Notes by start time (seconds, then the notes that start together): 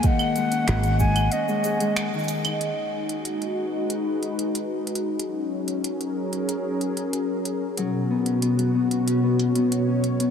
Already playing: A#3
0.03 D#3 F#5, kick, closed hi-hat, cabasa
0.19 cabasa, claves
0.36 G#3, closed hi-hat, cabasa
0.52 C#4, closed hi-hat, cabasa
0.68 G#1 G#3, finger snap, closed hi-hat, cabasa
0.83 D#3, closed hi-hat, cabasa
0.99 G#3 G#5, kick, cabasa
1.16 closed hi-hat, cabasa, claves
1.32 C#4 D#5, closed hi-hat, cabasa
1.48 G#3, cabasa
1.64 G#4, closed hi-hat, cabasa
1.80 G#3, closed hi-hat, cabasa
1.96 finger snap, closed hi-hat, cabasa
2.13 D#3, cabasa
2.19 cabasa
2.24 cabasa
2.28 closed hi-hat, cabasa
2.45 D#4, closed hi-hat, cabasa, claves
2.61 G#3, closed hi-hat
2.67 D#4
3.01 F#4
3.09 closed hi-hat
3.25 closed hi-hat
3.42 closed hi-hat
3.46 B4
3.90 closed hi-hat
4.23 closed hi-hat
4.39 closed hi-hat
4.55 closed hi-hat
4.87 closed hi-hat
4.95 closed hi-hat
5.20 F#3, closed hi-hat
5.27 C#4
5.68 G#4, closed hi-hat
5.80 A#4
5.84 closed hi-hat
6.01 closed hi-hat
6.33 closed hi-hat
6.49 closed hi-hat
6.81 closed hi-hat
6.97 closed hi-hat
7.13 closed hi-hat
7.45 closed hi-hat
7.77 B2 F#3, closed hi-hat
7.88 B3
8.01 F#4
8.10 B3
8.26 C#4, closed hi-hat
8.42 B3, closed hi-hat
8.58 F#3, closed hi-hat
8.74 B3
8.91 C#5, closed hi-hat
9.06 C#4, closed hi-hat
9.23 B3
9.39 C#4, closed hi-hat
9.55 B3, closed hi-hat
9.72 closed hi-hat
9.88 C#4
10.04 closed hi-hat
10.19 B3, closed hi-hat